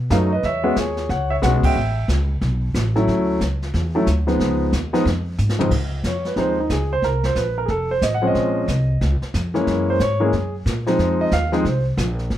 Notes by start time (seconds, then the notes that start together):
0.10 F#2 F#3 A3 C#4 D#4 B4 F5, kick, snare, hi-hat pedal
0.33 B4 D#5
0.43 E2 C#5 E5, brush sweep, kick, snare
0.63 G#3 B3 C#4 F#4
0.76 D#2 G#4 C#5, kick, snare, hi-hat pedal
0.97 snare
1.09 C#2 C#5 F#5, brush sweep, kick, snare
1.30 C#5 E5
1.42 B1 G#3 B3 C#4 F#4 C#5 F#5, kick, snare, hi-hat pedal
1.63 E5 G5, muted upright bass stroke, kick, crash
1.75 A1, brush sweep
2.08 C#2, kick, snare, hi-hat pedal
2.41 B1, brush sweep, kick, snare
2.74 A1, kick, snare, hi-hat pedal
2.96 F#3 A3 C#4 E4, snare
3.07 D2, brush sweep, kick, snare
3.41 C#2, kick, snare, hi-hat pedal
3.62 snare
3.74 E2, brush sweep, kick, snare
3.95 F#3 A3 C#4 E4
4.07 D2, kick, snare, hi-hat pedal
4.27 F3 G#3 B3 D#4, snare
4.39 C#2, brush sweep, kick, snare
4.73 D#2, kick, snare, hi-hat pedal
4.93 F3 G#3 B3 D#4, snare
5.05 F2, brush sweep, kick, snare
5.38 G#2, hi-hat pedal
5.49 snare
5.59 C#2 F3 G#3 C4 D#4, floor tom
5.71 C#2, brush sweep, kick, snare, crash
6.03 F2 C#5, kick, snare, hi-hat pedal
6.25 B4, snare
6.36 D#2 F3 G#3 C4 D#4 C5, brush sweep, kick, snare
6.60 D#4
6.70 C#2 G#4, kick, snare, hi-hat pedal
6.93 C5
7.02 C2 A#4, brush sweep, kick, snare
7.24 C5, snare
7.35 A#1 B4, kick, snare, hi-hat pedal
7.58 A#4
7.65 F1 G#4, brush sweep, kick, snare
7.70 A4
7.91 C5
8.02 A1 D#5, kick, snare, hi-hat pedal
8.14 F#5
8.22 F3 G#3 C4 C#4
8.27 D#5
8.35 A#1, brush sweep, kick, snare
8.68 C2, kick, snare, hi-hat pedal
9.01 C#2, brush sweep, kick, snare
9.22 muted upright bass stroke, snare
9.34 F2, kick, snare, hi-hat pedal
9.54 E3 G#3 A#3 C#4, snare
9.67 F#2, brush sweep, kick, snare
9.90 C5
10.00 G#2 C#5, kick, snare, hi-hat pedal
10.20 E3 G#3 A#3 C#4
10.24 G#4
10.32 F#2, brush sweep, kick, snare
10.66 A#2, kick, snare, hi-hat pedal
10.86 F3 G#3 C4 D#4, snare
10.99 F2, brush sweep, kick, snare
11.21 D#5
11.31 D#2 F5, kick, snare, hi-hat pedal
11.52 F3 G#3 C4 D#4 C5, snare
11.65 C2, brush sweep, kick, snare
11.97 A#1, kick, snare, hi-hat pedal
12.19 snare
12.30 G#1, brush sweep, kick, snare